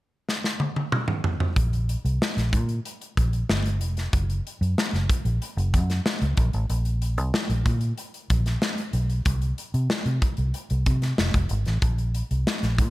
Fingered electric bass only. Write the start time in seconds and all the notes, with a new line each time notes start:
1.56 A#1
2.05 C2
2.37 A#1
2.53 A#2
3.17 A#1
3.49 G1
3.81 F1
4.13 F#1
4.61 F#2
4.93 F#1
5.25 A#1
5.57 F#1
5.74 F#2
6.22 C#2
6.38 A#1
6.54 A1
6.70 A#1
7.17 C2
7.49 A#1
7.66 A#2
8.30 A#1
8.93 B1
9.26 C2
9.74 C3
10.05 C3
10.38 C2
10.71 C2
10.86 C3
11.18 F1
11.34 F1
11.51 G#1
11.67 A1
11.82 A#1
12.31 C2
12.63 A#1
12.78 A#2